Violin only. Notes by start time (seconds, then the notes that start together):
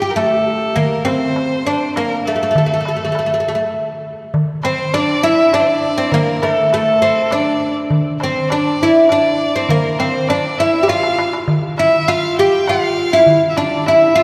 Already playing: G5
0.11 A#4
0.16 A4
0.77 A#4
1.07 C5
1.96 A#4
2.25 A4
4.63 C5
4.94 D5
5.23 E5
5.54 D5
5.60 C5
5.67 D5
6.12 A#4
6.42 A4
6.71 A4
7.30 D5
8.20 C5
8.49 D5
9.09 D5
9.69 A#4
9.99 C5
10.28 D5
10.59 E5
10.88 F5
11.78 E5
12.08 F5
12.38 G5
12.68 F5
13.50 E5
13.56 D5
13.86 E5